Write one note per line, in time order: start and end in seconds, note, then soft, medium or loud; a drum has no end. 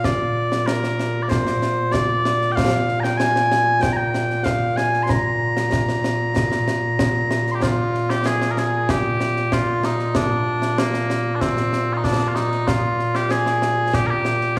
0.00 14.59 A#2 medium
0.04 0.66 D5 medium
0.04 concert bass drum medium
0.04 snare medium
0.52 snare medium
0.66 1.22 A#4 medium
0.66 snare medium
0.84 snare medium
0.99 snare medium
1.22 1.29 D5 medium
1.29 1.92 C5 medium
1.29 concert bass drum medium
1.29 snare medium
1.47 snare medium
1.62 snare medium
1.92 2.52 D5 loud
1.92 concert bass drum medium
1.92 snare loud
2.25 snare medium
2.42 snare soft
2.52 3.00 F5 loud
2.52 2.56 G5 loud
2.57 concert bass drum medium
2.57 snare loud
2.89 snare soft
3.00 3.18 G5 loud
3.00 3.03 A#5 loud
3.04 snare medium
3.18 3.81 G#5 loud
3.18 snare medium
3.36 snare medium
3.52 snare medium
3.81 3.93 G5 loud
3.81 concert bass drum medium
3.81 snare medium
3.93 3.97 A#5 loud
3.97 4.44 G5 loud
4.14 snare medium
4.30 snare soft
4.44 4.77 F5 loud
4.44 concert bass drum medium
4.44 snare medium
4.77 5.03 G#5 loud
4.77 snare medium
4.94 snare soft
5.03 5.10 C6 medium
5.09 7.52 A#5 loud
5.09 concert bass drum medium
5.09 snare medium
5.57 snare medium
5.72 concert bass drum medium
5.72 snare medium
5.89 snare medium
6.04 snare medium
6.36 concert bass drum medium
6.36 snare medium
6.52 snare medium
6.68 snare medium
6.99 concert bass drum medium
6.99 snare loud
7.31 snare medium
7.47 snare soft
7.52 7.62 G4 medium
7.52 7.55 C6 medium
7.62 8.10 F4 medium
7.62 concert bass drum medium
7.62 snare loud
7.94 snare soft
8.10 8.26 G4 medium
8.10 snare medium
8.26 8.51 G#4 medium
8.26 snare loud
8.42 snare medium
8.51 8.59 A#4 medium
8.57 8.90 G#4 medium
8.57 snare medium
8.89 9.53 G4 medium
8.89 concert bass drum medium
8.89 snare loud
9.20 snare medium
9.36 snare soft
9.52 9.85 F4 medium
9.52 concert bass drum soft
9.52 snare medium
9.83 10.16 D#4 medium
9.83 snare medium
9.99 snare soft
10.15 10.78 D4 loud
10.15 concert bass drum medium
10.15 snare loud
10.62 snare medium
10.78 11.35 A#3 medium
10.78 snare loud
10.94 snare medium
11.10 snare medium
11.35 11.41 D4 medium
11.41 11.93 C4 medium
11.41 concert bass drum medium
11.41 snare medium
11.57 snare medium
11.73 snare medium
11.93 12.04 D#4 medium
11.93 11.97 F4 medium
12.04 12.28 D4 loud
12.04 concert bass drum soft
12.04 snare medium
12.28 12.35 F4 medium
12.35 12.68 D#4 loud
12.35 snare medium
12.52 snare soft
12.68 13.15 F4 loud
12.68 concert bass drum medium
12.68 snare medium
12.99 snare soft
13.15 13.31 G4 loud
13.15 snare medium
13.31 13.95 G#4 loud
13.31 snare medium
13.46 snare medium
13.62 snare medium
13.94 14.07 G4 loud
13.94 concert bass drum medium
13.94 snare medium
14.07 14.57 G4 loud
14.07 14.11 A#4 loud
14.25 snare medium
14.41 snare soft